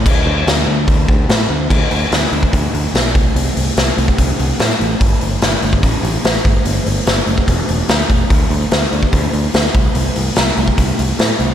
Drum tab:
CC |x---------------|x---------------|----------------|----------------|
HH |----o---o---o---|--o-o-o-o-o-o-o-|o-o-o-o-o-o-o-o-|o-o-o-o-o-o-o-o-|
SD |----o-------o---|----o-------o---|----o-------o---|----o-------o---|
BD |o-------o-o-----|o------oo-----o-|-------oo-------|o------oo-----o-|

CC |----------------|----------------|----------------|
HH |o-o-o-o-o-o-o-o-|o-o-o-o-o-o-o-o-|o-o-o-o-o-o-o-o-|
SD |----o-------o---|----o-------o---|----o-------o---|
BD |-------oo-----o-|o------oo-----o-|-------oo-------|